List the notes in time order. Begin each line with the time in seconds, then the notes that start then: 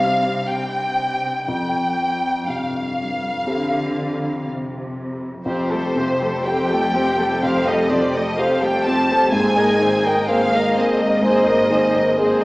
Already playing: C2 G2 C3 C4 D#4 G4 F5
0.49 G5
1.46 F2 G5
2.48 G2 C3 F5
3.46 D3 C4 G4 A4
4.47 C3
5.46 F1 F2 F3 C4 G4 C5
5.72 G3 A3 G4 A4
5.95 C3 F3 C4 G4 C5
6.22 G3 A3 G4 A4
6.45 F3 C4 G4 A4 C5 G5
6.70 G3 A3 G4 A4
6.94 F3 C4 G4 C5
7.19 G3 A3 G4 A4
7.41 F2 F3 C4 G4 A4 C5 F5
7.66 G3 A3 G4 A4 D#5
7.89 C3 F3 C4 G4 C5 D5
8.14 G3 A3 G4 A4 D#5
8.37 F3 C4 G4 A4 C5 F5
8.62 G3 A3 G4 A4 G5
8.86 F3 C4 G4 C5 A5
9.10 G3 A3 G4 A4
9.31 G#1 G#2 A#3 C4 G#4 C5 G#5
9.57 G#3 A#3 A#4 D#5
9.79 D#3 A#3 C4 G#4 C5
10.04 G#3 A#3 A#4 D#5 G5
10.27 A#3 C4 G#4 A#4 C5 F5
10.53 G#3 A#3 A#4 D#5
10.76 A#3 C4 G#4 C5 D#5
11.00 G#3 A#3 A#4 D#5
11.22 G#2 A#3 C4 G#4 C5
11.48 G#3 A#3 A#4 D#5
11.70 D#3 A#3 C4 G#4 C5
11.95 G#3 A#3 A#4 D#5
12.17 A#3 C4 G#4 A#4 C5
12.41 A#4